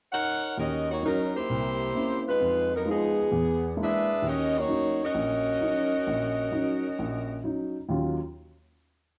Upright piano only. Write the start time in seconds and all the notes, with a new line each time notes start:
0.57 D#2
1.03 F#3 C#4 D#4
1.50 C2
1.95 A#3 C4 C#4 E4
2.40 F2
2.86 G#3 D#4 F4
3.32 E2
3.77 G#3 A#3 D4 E4
4.22 D#2
4.68 F#3 C#4 D#4
5.15 A#1
5.61 F#3 C#4 D#4
6.07 A#1
6.51 F#3 C#4 D#4
6.99 A#1
7.44 F#3 C#4 D#4
7.89 D#2 D#3 F#3 C#4 F4